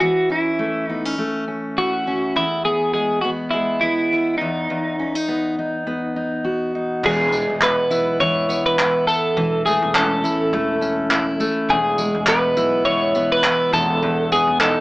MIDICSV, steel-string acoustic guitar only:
0, 0, Header, 1, 2, 480
1, 0, Start_track
1, 0, Key_signature, 4, "major"
1, 0, Tempo, 583658
1, 13, Time_signature, 4, 2, 24, 8
1, 12176, End_track
2, 0, Start_track
2, 0, Title_t, "Steel-string acoustic guitar"
2, 0, Program_c, 0, 25
2, 0, Note_on_c, 0, 64, 53
2, 5, Note_on_c, 0, 52, 73
2, 243, Note_on_c, 0, 61, 47
2, 486, Note_on_c, 0, 57, 51
2, 731, Note_off_c, 0, 61, 0
2, 737, Note_on_c, 0, 59, 50
2, 866, Note_off_c, 0, 59, 0
2, 866, Note_on_c, 0, 61, 43
2, 962, Note_off_c, 0, 57, 0
2, 972, Note_on_c, 0, 57, 54
2, 1205, Note_off_c, 0, 61, 0
2, 1215, Note_on_c, 0, 61, 50
2, 1458, Note_off_c, 0, 64, 0
2, 1461, Note_on_c, 0, 64, 53
2, 1694, Note_off_c, 0, 61, 0
2, 1704, Note_on_c, 0, 61, 53
2, 1938, Note_on_c, 0, 40, 70
2, 1991, Note_off_c, 0, 57, 0
2, 1995, Note_off_c, 0, 64, 0
2, 1996, Note_off_c, 0, 61, 0
2, 2179, Note_on_c, 0, 59, 48
2, 2420, Note_on_c, 0, 56, 53
2, 2663, Note_off_c, 0, 59, 0
2, 2666, Note_on_c, 0, 59, 52
2, 2884, Note_off_c, 0, 52, 0
2, 2896, Note_off_c, 0, 56, 0
2, 2906, Note_on_c, 0, 56, 52
2, 3143, Note_off_c, 0, 59, 0
2, 3146, Note_on_c, 0, 59, 52
2, 3394, Note_on_c, 0, 64, 53
2, 3618, Note_off_c, 0, 40, 0
2, 3628, Note_on_c, 0, 40, 71
2, 3679, Note_off_c, 0, 56, 0
2, 3683, Note_off_c, 0, 64, 0
2, 3856, Note_off_c, 0, 40, 0
2, 3866, Note_on_c, 0, 40, 69
2, 4104, Note_off_c, 0, 59, 0
2, 4107, Note_on_c, 0, 61, 48
2, 4237, Note_off_c, 0, 61, 0
2, 4237, Note_on_c, 0, 63, 39
2, 4344, Note_on_c, 0, 59, 52
2, 4584, Note_off_c, 0, 63, 0
2, 4594, Note_on_c, 0, 63, 50
2, 4822, Note_off_c, 0, 59, 0
2, 4825, Note_on_c, 0, 59, 53
2, 5058, Note_off_c, 0, 63, 0
2, 5068, Note_on_c, 0, 63, 48
2, 5300, Note_on_c, 0, 66, 52
2, 5541, Note_off_c, 0, 63, 0
2, 5551, Note_on_c, 0, 63, 51
2, 5777, Note_off_c, 0, 40, 0
2, 5787, Note_on_c, 0, 40, 85
2, 5836, Note_off_c, 0, 66, 0
2, 5842, Note_off_c, 0, 63, 0
2, 6027, Note_off_c, 0, 59, 0
2, 6030, Note_on_c, 0, 56, 57
2, 6261, Note_on_c, 0, 59, 59
2, 6501, Note_on_c, 0, 64, 68
2, 6749, Note_on_c, 0, 52, 73
2, 6972, Note_off_c, 0, 59, 0
2, 6982, Note_on_c, 0, 59, 65
2, 7226, Note_off_c, 0, 64, 0
2, 7229, Note_on_c, 0, 64, 62
2, 7466, Note_off_c, 0, 56, 0
2, 7700, Note_off_c, 0, 52, 0
2, 7703, Note_on_c, 0, 52, 84
2, 7704, Note_off_c, 0, 40, 0
2, 7755, Note_off_c, 0, 59, 0
2, 7952, Note_on_c, 0, 57, 59
2, 8195, Note_on_c, 0, 61, 61
2, 8417, Note_off_c, 0, 64, 0
2, 8420, Note_on_c, 0, 64, 64
2, 8654, Note_off_c, 0, 57, 0
2, 8664, Note_on_c, 0, 57, 72
2, 8882, Note_off_c, 0, 61, 0
2, 8892, Note_on_c, 0, 61, 62
2, 9131, Note_off_c, 0, 64, 0
2, 9135, Note_on_c, 0, 64, 65
2, 9365, Note_off_c, 0, 57, 0
2, 9375, Note_on_c, 0, 57, 68
2, 9622, Note_on_c, 0, 40, 85
2, 9667, Note_off_c, 0, 61, 0
2, 9669, Note_off_c, 0, 57, 0
2, 9669, Note_off_c, 0, 64, 0
2, 9854, Note_on_c, 0, 56, 59
2, 10093, Note_on_c, 0, 59, 65
2, 10338, Note_on_c, 0, 64, 72
2, 10563, Note_off_c, 0, 52, 0
2, 10567, Note_on_c, 0, 52, 68
2, 10813, Note_off_c, 0, 59, 0
2, 10816, Note_on_c, 0, 59, 60
2, 11052, Note_off_c, 0, 64, 0
2, 11062, Note_on_c, 0, 64, 64
2, 11282, Note_off_c, 0, 40, 0
2, 11292, Note_on_c, 0, 40, 87
2, 11342, Note_off_c, 0, 52, 0
2, 11345, Note_off_c, 0, 56, 0
2, 11350, Note_off_c, 0, 64, 0
2, 11527, Note_off_c, 0, 40, 0
2, 11536, Note_on_c, 0, 40, 84
2, 11775, Note_off_c, 0, 59, 0
2, 11775, Note_on_c, 0, 59, 58
2, 12022, Note_on_c, 0, 63, 66
2, 12176, Note_off_c, 0, 40, 0
2, 12176, Note_off_c, 0, 59, 0
2, 12176, Note_off_c, 0, 63, 0
2, 12176, End_track
0, 0, End_of_file